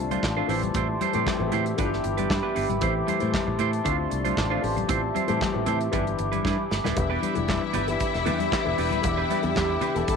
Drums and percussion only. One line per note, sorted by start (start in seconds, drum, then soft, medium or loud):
0.11 closed hi-hat medium
0.11 high conga medium
0.23 kick medium
0.23 snare loud
0.23 clap medium
0.23 muted conga soft
0.49 open hi-hat medium
0.49 muted conga soft
0.63 closed hi-hat soft
0.63 high conga medium
0.63 low conga medium
0.74 kick loud
0.74 closed hi-hat medium
1.01 closed hi-hat medium
1.01 high conga medium
1.13 closed hi-hat soft
1.13 high conga medium
1.27 kick loud
1.27 snare medium
1.27 clap medium
1.27 muted conga soft
1.27 high conga medium
1.52 closed hi-hat medium
1.52 muted conga soft
1.52 low conga medium
1.66 closed hi-hat soft
1.78 kick loud
1.78 closed hi-hat medium
1.93 snare soft
2.04 closed hi-hat medium
2.18 closed hi-hat soft
2.18 high conga medium
2.30 kick loud
2.30 snare loud
2.30 clap medium
2.56 open hi-hat medium
2.56 muted conga soft
2.70 closed hi-hat soft
2.70 high conga medium
2.70 low conga medium
2.81 kick loud
2.81 closed hi-hat medium
2.81 muted conga soft
3.08 closed hi-hat medium
3.08 muted conga soft
3.08 high conga medium
3.20 closed hi-hat soft
3.20 high conga medium
3.34 kick loud
3.34 snare loud
3.34 clap medium
3.34 high conga medium
3.59 closed hi-hat medium
3.59 muted conga soft
3.59 low conga medium
3.73 closed hi-hat soft
3.85 kick loud
3.85 closed hi-hat medium
4.11 closed hi-hat medium
4.25 closed hi-hat soft
4.25 high conga medium
4.37 kick loud
4.37 snare medium
4.37 clap medium
4.37 muted conga soft
4.64 open hi-hat medium
4.64 muted conga soft
4.77 closed hi-hat soft
4.77 high conga medium
4.77 low conga medium
4.89 kick loud
4.89 closed hi-hat medium
4.89 muted conga soft
4.89 low conga medium
5.15 closed hi-hat medium
5.15 muted conga soft
5.15 high conga medium
5.28 closed hi-hat soft
5.28 high conga medium
5.41 kick loud
5.41 snare medium
5.41 clap medium
5.41 high conga medium
5.66 closed hi-hat medium
5.66 low conga medium
5.81 closed hi-hat soft
5.93 kick loud
5.93 closed hi-hat medium
5.93 muted conga soft
6.07 closed hi-hat soft
6.19 closed hi-hat medium
6.33 closed hi-hat medium
6.33 high conga medium
6.45 kick medium
6.45 snare medium
6.71 snare medium
6.71 muted conga soft
6.85 snare medium
6.85 high conga medium
6.85 low conga medium
6.97 kick loud
6.97 closed hi-hat medium
6.97 low conga medium
7.23 closed hi-hat medium
7.23 high conga medium
7.35 closed hi-hat soft
7.35 high conga medium
7.48 kick loud
7.48 snare loud
7.48 clap medium
7.48 muted conga soft
7.48 high conga medium
7.74 closed hi-hat medium
7.74 muted conga soft
7.74 low conga medium
7.88 closed hi-hat soft
8.00 kick loud
8.00 closed hi-hat medium
8.00 muted conga soft
8.14 snare soft
8.14 closed hi-hat soft
8.26 closed hi-hat medium
8.26 muted conga soft
8.26 high conga medium
8.40 closed hi-hat soft
8.40 high conga medium
8.52 kick loud
8.52 snare loud
8.52 clap medium
8.52 muted conga soft
8.78 open hi-hat medium
8.78 muted conga soft
8.91 closed hi-hat soft
8.91 high conga medium
8.91 low conga medium
9.03 kick loud
9.03 closed hi-hat medium
9.03 muted conga soft
9.03 low conga medium
9.30 closed hi-hat medium
9.30 muted conga soft
9.30 high conga medium
9.43 closed hi-hat soft
9.43 high conga medium
9.55 kick loud
9.55 snare medium
9.55 clap medium
9.55 high conga medium
9.81 closed hi-hat medium
9.81 muted conga soft
9.81 low conga medium
9.96 closed hi-hat soft
10.08 kick loud
10.08 closed hi-hat medium
10.08 muted conga soft